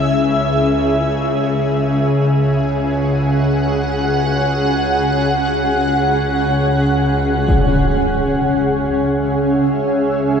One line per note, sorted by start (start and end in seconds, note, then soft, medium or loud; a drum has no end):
0.00 7.48 C#2 medium
0.00 7.48 C#3 medium
0.00 10.40 C#4 medium
0.00 10.40 G#4 medium
0.00 2.45 E5 medium
2.17 10.10 F#5 medium
7.49 10.40 C#2 medium
7.49 10.40 C#3 medium
7.49 10.40 G#4 medium
7.49 impact medium
8.34 10.40 E5 medium